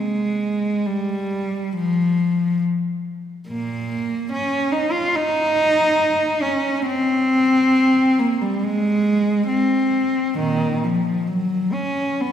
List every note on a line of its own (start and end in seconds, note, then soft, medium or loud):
0.00 0.83 G#3 medium
0.86 1.77 G3 medium
1.76 2.61 F3 medium
3.47 4.28 A#2 medium
3.47 4.27 A#3 medium
4.33 4.75 C#4 medium
4.72 4.94 D#4 medium
4.92 5.15 F4 medium
5.16 6.44 D#4 loud
6.42 6.86 C#4 medium
6.86 8.17 C4 loud
8.19 8.41 A#3 medium
8.41 8.63 G3 medium
8.63 9.50 G#3 medium
9.48 10.35 C4 medium
10.38 10.79 A#2 medium
10.38 10.82 D#3 medium
10.84 11.28 F3 medium
11.28 11.73 F#3 medium
11.73 12.21 C#4 medium
12.21 12.32 B3 medium